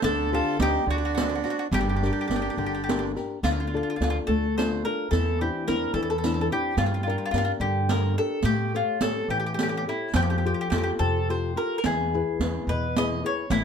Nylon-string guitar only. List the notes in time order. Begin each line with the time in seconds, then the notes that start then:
0.02 D3
0.32 C4 D4 G4
0.60 C4 D4 G4
0.86 D3
1.17 C4 D4 F#4
1.44 C4 D4 F#4
1.72 G3
2.02 D4 G4 A#4
2.30 D4 G4 A#4
2.58 D3
2.88 D4 G4 A#4
3.16 D4 G4 A#4
3.43 D3
3.74 D4 F4 A4
4.01 D4 F4 A4
4.28 A3
4.58 D4 F4 A4
4.86 D4 F4 A4
5.11 E3
5.41 C4 D4 E4
5.67 C4 D4 E4
5.95 E3
6.23 C4 D4 E4
6.51 C4 D4 E4
6.79 G3
7.07 D4 G4 A#4
7.34 D4 G4 A#4
7.60 D3
7.90 D4 G4 A#4
8.18 D4 G4 A#4
8.46 A3
8.74 G4 A4 C#5
9.01 G4 A4 C#5
9.29 E3
9.59 G4 A4 C#5
9.87 G4 A4 C#5
10.15 F3
10.45 F4 G4 A4
10.72 F4 G4 A4
10.99 C3
11.29 F4 G4 A4
11.56 F4 G4 A4
11.85 E3
12.14 E4 G#4 B4
12.42 E4 G#4 B4
12.69 B2
12.97 E4 G#4 B4
13.24 E4 G#4 B4
13.50 A3